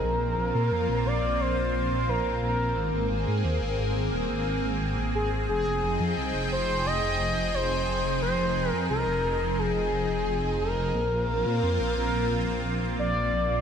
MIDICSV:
0, 0, Header, 1, 4, 480
1, 0, Start_track
1, 0, Key_signature, -4, "minor"
1, 0, Tempo, 681818
1, 26, Time_signature, 4, 2, 24, 8
1, 9582, End_track
2, 0, Start_track
2, 0, Title_t, "Analog synth lead"
2, 0, Program_c, 0, 81
2, 0, Note_on_c, 0, 70, 113
2, 749, Note_on_c, 0, 74, 101
2, 760, Note_off_c, 0, 70, 0
2, 989, Note_on_c, 0, 72, 107
2, 1000, Note_off_c, 0, 74, 0
2, 1470, Note_on_c, 0, 70, 95
2, 1481, Note_off_c, 0, 72, 0
2, 1708, Note_off_c, 0, 70, 0
2, 1712, Note_on_c, 0, 70, 88
2, 2161, Note_off_c, 0, 70, 0
2, 3626, Note_on_c, 0, 68, 106
2, 3724, Note_off_c, 0, 68, 0
2, 3864, Note_on_c, 0, 68, 120
2, 4317, Note_off_c, 0, 68, 0
2, 4590, Note_on_c, 0, 72, 103
2, 4832, Note_on_c, 0, 75, 121
2, 4842, Note_off_c, 0, 72, 0
2, 5310, Note_on_c, 0, 72, 110
2, 5320, Note_off_c, 0, 75, 0
2, 5784, Note_off_c, 0, 72, 0
2, 5788, Note_on_c, 0, 72, 112
2, 6126, Note_off_c, 0, 72, 0
2, 6126, Note_on_c, 0, 70, 112
2, 6239, Note_off_c, 0, 70, 0
2, 6267, Note_on_c, 0, 70, 106
2, 6749, Note_on_c, 0, 68, 106
2, 6760, Note_off_c, 0, 70, 0
2, 7463, Note_off_c, 0, 68, 0
2, 7467, Note_on_c, 0, 70, 110
2, 8398, Note_off_c, 0, 70, 0
2, 8429, Note_on_c, 0, 70, 90
2, 8879, Note_off_c, 0, 70, 0
2, 9146, Note_on_c, 0, 74, 120
2, 9582, Note_off_c, 0, 74, 0
2, 9582, End_track
3, 0, Start_track
3, 0, Title_t, "Analog synth pad"
3, 0, Program_c, 1, 89
3, 0, Note_on_c, 1, 60, 76
3, 28, Note_on_c, 1, 58, 84
3, 29, Note_on_c, 1, 65, 94
3, 1928, Note_off_c, 1, 58, 0
3, 1928, Note_off_c, 1, 65, 0
3, 1946, Note_on_c, 1, 58, 83
3, 1947, Note_on_c, 1, 68, 94
3, 3847, Note_off_c, 1, 58, 0
3, 3866, Note_on_c, 1, 53, 83
3, 3866, Note_on_c, 1, 63, 76
3, 3867, Note_on_c, 1, 79, 77
3, 7677, Note_off_c, 1, 60, 0
3, 7678, Note_off_c, 1, 53, 0
3, 7678, Note_off_c, 1, 63, 0
3, 7678, Note_off_c, 1, 68, 0
3, 7678, Note_off_c, 1, 79, 0
3, 7706, Note_on_c, 1, 60, 75
3, 7707, Note_on_c, 1, 65, 91
3, 7708, Note_on_c, 1, 58, 83
3, 9582, Note_off_c, 1, 58, 0
3, 9582, Note_off_c, 1, 60, 0
3, 9582, Note_off_c, 1, 65, 0
3, 9582, End_track
4, 0, Start_track
4, 0, Title_t, "Detuned saw bass"
4, 0, Program_c, 2, 39
4, 27, Note_on_c, 2, 34, 102
4, 130, Note_off_c, 2, 34, 0
4, 146, Note_on_c, 2, 34, 76
4, 250, Note_off_c, 2, 34, 0
4, 267, Note_on_c, 2, 34, 97
4, 370, Note_off_c, 2, 34, 0
4, 388, Note_on_c, 2, 46, 84
4, 491, Note_off_c, 2, 46, 0
4, 506, Note_on_c, 2, 41, 102
4, 610, Note_off_c, 2, 41, 0
4, 626, Note_on_c, 2, 34, 76
4, 730, Note_off_c, 2, 34, 0
4, 746, Note_on_c, 2, 34, 95
4, 849, Note_off_c, 2, 34, 0
4, 866, Note_on_c, 2, 34, 87
4, 970, Note_off_c, 2, 34, 0
4, 985, Note_on_c, 2, 34, 101
4, 1089, Note_off_c, 2, 34, 0
4, 1105, Note_on_c, 2, 34, 76
4, 1209, Note_off_c, 2, 34, 0
4, 1224, Note_on_c, 2, 34, 95
4, 1329, Note_off_c, 2, 34, 0
4, 1345, Note_on_c, 2, 34, 84
4, 1449, Note_off_c, 2, 34, 0
4, 1463, Note_on_c, 2, 34, 100
4, 1568, Note_off_c, 2, 34, 0
4, 1585, Note_on_c, 2, 34, 79
4, 1689, Note_off_c, 2, 34, 0
4, 1705, Note_on_c, 2, 34, 95
4, 1809, Note_off_c, 2, 34, 0
4, 1825, Note_on_c, 2, 34, 82
4, 1929, Note_off_c, 2, 34, 0
4, 1945, Note_on_c, 2, 32, 102
4, 2049, Note_off_c, 2, 32, 0
4, 2066, Note_on_c, 2, 32, 79
4, 2170, Note_off_c, 2, 32, 0
4, 2186, Note_on_c, 2, 32, 97
4, 2289, Note_off_c, 2, 32, 0
4, 2306, Note_on_c, 2, 44, 83
4, 2410, Note_off_c, 2, 44, 0
4, 2426, Note_on_c, 2, 39, 102
4, 2529, Note_off_c, 2, 39, 0
4, 2545, Note_on_c, 2, 32, 77
4, 2649, Note_off_c, 2, 32, 0
4, 2665, Note_on_c, 2, 32, 96
4, 2769, Note_off_c, 2, 32, 0
4, 2786, Note_on_c, 2, 32, 85
4, 2889, Note_off_c, 2, 32, 0
4, 2906, Note_on_c, 2, 27, 103
4, 3009, Note_off_c, 2, 27, 0
4, 3027, Note_on_c, 2, 32, 77
4, 3130, Note_off_c, 2, 32, 0
4, 3147, Note_on_c, 2, 32, 93
4, 3250, Note_off_c, 2, 32, 0
4, 3266, Note_on_c, 2, 32, 82
4, 3370, Note_off_c, 2, 32, 0
4, 3386, Note_on_c, 2, 32, 102
4, 3490, Note_off_c, 2, 32, 0
4, 3506, Note_on_c, 2, 32, 80
4, 3610, Note_off_c, 2, 32, 0
4, 3626, Note_on_c, 2, 32, 97
4, 3730, Note_off_c, 2, 32, 0
4, 3746, Note_on_c, 2, 32, 80
4, 3850, Note_off_c, 2, 32, 0
4, 3867, Note_on_c, 2, 29, 104
4, 3970, Note_off_c, 2, 29, 0
4, 3987, Note_on_c, 2, 29, 79
4, 4090, Note_off_c, 2, 29, 0
4, 4108, Note_on_c, 2, 29, 96
4, 4211, Note_off_c, 2, 29, 0
4, 4227, Note_on_c, 2, 41, 84
4, 4330, Note_off_c, 2, 41, 0
4, 4348, Note_on_c, 2, 36, 103
4, 4450, Note_off_c, 2, 36, 0
4, 4467, Note_on_c, 2, 29, 78
4, 4570, Note_off_c, 2, 29, 0
4, 4587, Note_on_c, 2, 29, 93
4, 4690, Note_off_c, 2, 29, 0
4, 4707, Note_on_c, 2, 29, 86
4, 4810, Note_off_c, 2, 29, 0
4, 4828, Note_on_c, 2, 29, 104
4, 4931, Note_off_c, 2, 29, 0
4, 4947, Note_on_c, 2, 29, 77
4, 5050, Note_off_c, 2, 29, 0
4, 5067, Note_on_c, 2, 29, 98
4, 5170, Note_off_c, 2, 29, 0
4, 5188, Note_on_c, 2, 29, 84
4, 5290, Note_off_c, 2, 29, 0
4, 5307, Note_on_c, 2, 29, 105
4, 5410, Note_off_c, 2, 29, 0
4, 5428, Note_on_c, 2, 29, 78
4, 5530, Note_off_c, 2, 29, 0
4, 5547, Note_on_c, 2, 29, 96
4, 5650, Note_off_c, 2, 29, 0
4, 5668, Note_on_c, 2, 29, 83
4, 5771, Note_off_c, 2, 29, 0
4, 5788, Note_on_c, 2, 29, 102
4, 5891, Note_off_c, 2, 29, 0
4, 5906, Note_on_c, 2, 29, 78
4, 6010, Note_off_c, 2, 29, 0
4, 6026, Note_on_c, 2, 29, 98
4, 6130, Note_off_c, 2, 29, 0
4, 6147, Note_on_c, 2, 41, 83
4, 6250, Note_off_c, 2, 41, 0
4, 6267, Note_on_c, 2, 36, 102
4, 6370, Note_off_c, 2, 36, 0
4, 6386, Note_on_c, 2, 29, 79
4, 6490, Note_off_c, 2, 29, 0
4, 6506, Note_on_c, 2, 29, 96
4, 6609, Note_off_c, 2, 29, 0
4, 6625, Note_on_c, 2, 29, 86
4, 6729, Note_off_c, 2, 29, 0
4, 6745, Note_on_c, 2, 29, 102
4, 6849, Note_off_c, 2, 29, 0
4, 6866, Note_on_c, 2, 29, 77
4, 6970, Note_off_c, 2, 29, 0
4, 6986, Note_on_c, 2, 29, 95
4, 7090, Note_off_c, 2, 29, 0
4, 7106, Note_on_c, 2, 29, 85
4, 7210, Note_off_c, 2, 29, 0
4, 7226, Note_on_c, 2, 29, 104
4, 7330, Note_off_c, 2, 29, 0
4, 7347, Note_on_c, 2, 29, 79
4, 7450, Note_off_c, 2, 29, 0
4, 7466, Note_on_c, 2, 29, 97
4, 7570, Note_off_c, 2, 29, 0
4, 7586, Note_on_c, 2, 29, 82
4, 7690, Note_off_c, 2, 29, 0
4, 7707, Note_on_c, 2, 34, 102
4, 7810, Note_off_c, 2, 34, 0
4, 7827, Note_on_c, 2, 34, 78
4, 7930, Note_off_c, 2, 34, 0
4, 7947, Note_on_c, 2, 34, 100
4, 8050, Note_off_c, 2, 34, 0
4, 8067, Note_on_c, 2, 46, 84
4, 8170, Note_off_c, 2, 46, 0
4, 8189, Note_on_c, 2, 41, 105
4, 8291, Note_off_c, 2, 41, 0
4, 8308, Note_on_c, 2, 34, 79
4, 8410, Note_off_c, 2, 34, 0
4, 8427, Note_on_c, 2, 34, 94
4, 8530, Note_off_c, 2, 34, 0
4, 8548, Note_on_c, 2, 34, 83
4, 8650, Note_off_c, 2, 34, 0
4, 8667, Note_on_c, 2, 34, 101
4, 8770, Note_off_c, 2, 34, 0
4, 8786, Note_on_c, 2, 34, 76
4, 8890, Note_off_c, 2, 34, 0
4, 8905, Note_on_c, 2, 34, 96
4, 9009, Note_off_c, 2, 34, 0
4, 9025, Note_on_c, 2, 34, 82
4, 9129, Note_off_c, 2, 34, 0
4, 9145, Note_on_c, 2, 34, 104
4, 9249, Note_off_c, 2, 34, 0
4, 9266, Note_on_c, 2, 34, 79
4, 9369, Note_off_c, 2, 34, 0
4, 9386, Note_on_c, 2, 34, 97
4, 9490, Note_off_c, 2, 34, 0
4, 9505, Note_on_c, 2, 34, 84
4, 9582, Note_off_c, 2, 34, 0
4, 9582, End_track
0, 0, End_of_file